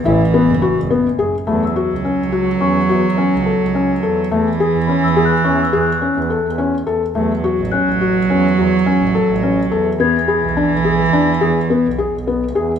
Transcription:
X:1
M:5/8
L:1/16
Q:1/4=106
K:Alyd
V:1 name="Celesta"
z4 b6 | b e'6- e' c'2- | c'4- c' z4 z | z4 b e' f'2 c' e' |
f'6- f' z3 | z4 f'6- | f' z8 z | g'2 b6- b z |
z8 z2 |]
V:2 name="Felt piano"
E2 B,2 F2 B,2 G2 | A,2 F2 C2 F2 C2 | F2 C2 A2 C2 A2 | A,2 G2 C2 G2 C2 |
G2 C2 A2 C2 A2 | A,2 F2 C2 F2 C2 | F2 C2 A2 C2 A2 | B,2 G2 =D2 G2 D2 |
G2 B,2 G2 B,2 G2 |]
V:3 name="Cello" clef=bass
E,8 z2 | F,8- F,2- | F,8- F,2 | E,8- E,2- |
E,8 z2 | F,8- F,2- | F,8- F,2 | E,8- E,2- |
E,8 z2 |]
V:4 name="Double bass" clef=bass
A,,,2 z F,,, z F,,,2 z F,, z | E,,2 z C,,2 C,,3 E,, z | E,,2 z C,,2 C,,3 E,, z | E,,2 z E,,2 E,,3 E,, z |
E,,2 z E,,2 E,,3 E,, z | E,,2 z A,,,2 A,,,3 E,, z | E,,2 z A,,,2 A,,,3 E,, z | E,,2 z B,,,2 B,,,3 E,, z |
E,,2 z B,,,2 B,,,3 E,, z |]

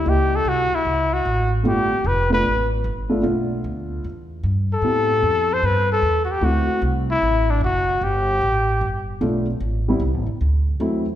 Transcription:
X:1
M:4/4
L:1/16
Q:"Swing" 1/4=151
K:Am
V:1 name="Trumpet"
G2 A2 ^F2 E4 F4 z2 | G4 B2 B4 z6 | z12 z2 A2- | A6 c2 B2 A3- A/2 ^F/2 G2 |
^F4 z2 E4 D2 F4 | G12 z4 | z16 |]
V:2 name="Grand piano"
[^A,EG_e]8- [A,=EG_e]2 z6 | [A,B,DF]2 z4 [A,B,DF]2 z6 [A,B,DF]2 | [A,B,DF]8 z8 | [B,CEG]8- [B,CEG]2 z6 |
[A,CE^F]8- [A,CEF]2 z6 | z12 [A,B,DF]2 z2 | z2 [G,B,CE]2 z8 [^F,A,CE]2 z2 |]
V:3 name="Upright bass" clef=bass
^C,,4 =C,,2 z2 ^C,,4 A,,,4 | G,,,4 F,,,4 A,,,4 G,,,4 | B,,,4 D,,4 E,,4 G,,4 | A,,4 F,,4 G,,4 E,,4 |
D,,2 z2 C,,4 A,,,4 ^F,,,4 | G,,,4 A,,,4 G,,,4 B,,,4 | A,,,4 (3C,,2 A,,,2 G,,,2 D,,4 E,,4 |]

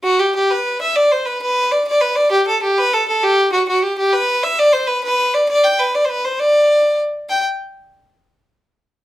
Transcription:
X:1
M:12/8
L:1/16
Q:3/8=132
K:G
V:1 name="Fiddle"
F2 G2 G2 B4 e2 d2 c2 B2 B4 d2 | d2 B2 d2 G2 A2 G2 B2 A2 A2 G4 F2 | F3/2 F/2 G2 G2 B4 e2 d2 c2 B2 B4 d2 | d2 g2 B2 d3/2 c/2 B2 c2 d8 z4 |
g2 z16 z6 |]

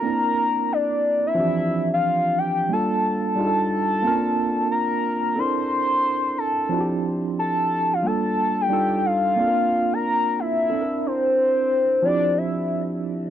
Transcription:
X:1
M:4/4
L:1/16
Q:"Swing 16ths" 1/4=90
K:Dm
V:1 name="Soft synth lead"
b4 d3 e4 f3 g2 | a12 b4 | c'6 a4 z2 a3 f | a3 g3 f4- f b3 e2- |
e2 c6 d2 e4 z2 |]
V:2 name="Tine electric piano"
[B,CDEB]6 z2 [E,F,CDG]6 z2 | [G,B,DFA]4 [G,D_EF^GA]4 [B,C^CDFB]6 z2 | [CDEAB]6 z2 [F,CDE^FG]6 z2 | [G,B,DFA]4 [G,D_EFA]4 [B,CDFAB]6 z2 |
[CDEAB]6 z2 [F,CDEG]6 z2 |]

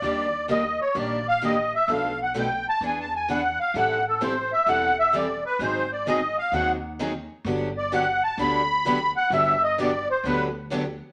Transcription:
X:1
M:4/4
L:1/8
Q:"Swing" 1/4=129
K:G
V:1 name="Accordion"
d2 _e ^c d =f e =e | =f ^f g a (3^g a g f =f | f A c e f e d B | c d _e =f _g z3 |
z d f a b3 f | e _e d c B z3 |]
V:2 name="Steel-string acoustic guitar"
[_E,G,_B,DG] z [E,G,B,DG] z [E,G,B,DG] z [E,G,B,DG] z | [B,,=F,A,DA] z [B,,F,A,DA] z [E,B,D^G] z [E,B,DG] z | [E,G,CEA] z [E,G,CEA] z [E,G,CEA] z [E,G,CEA] z | [_E,_G,C_E_A] z [E,G,CEA] z [E,G,CEA] z [E,G,CEA] z |
[D,F,B,DG] z [D,F,B,DG] z [D,F,B,DG] z [D,F,B,DG] z | [D,F,B,DG] z [D,F,B,DG] z [D,F,B,DG] z [D,F,B,DG] z |]
V:3 name="Steel-string acoustic guitar"
[_E,G,_B,DG] z [E,G,B,DG] z [E,G,B,DG] z [E,G,B,DG] z | [B,,=F,A,DAB] z [B,,F,A,DAB] z [E,B,D^GB] z [E,B,DGB] z | [E,G,CEA] z [E,G,CEA] z [E,G,CEA] z [E,G,CEA] z | [_E,_G,C_E_A] z [E,G,CEA] z [E,G,CEA] z [E,G,CEA] z |
[D,F,B,DG] z [D,F,B,DG] z [D,F,B,DG] z [D,F,B,DG] z | [D,F,B,DG] z [D,F,B,DG] z [D,F,B,DG] z [D,F,B,DG] z |]
V:4 name="Upright bass" clef=bass
_E,,4 _B,,,4 | B,,,4 E,,4 | A,,,4 E,,,4 | _A,,,4 _E,,4 |
G,,,4 D,,4 | G,,,4 D,,4 |]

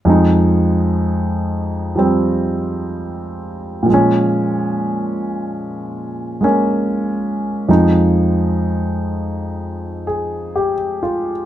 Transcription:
X:1
M:4/4
L:1/8
Q:"Swing" 1/4=63
K:Fm
V:1 name="Grand piano"
z8 | z8 | z4 z A G F |]
V:2 name="Grand piano" clef=bass
[F,,F,A,E]4 [F,G,C]4 | [B,,F,A,D]4- [B,,F,A,D] [A,B,D]3 | [F,,F,A,E]8 |]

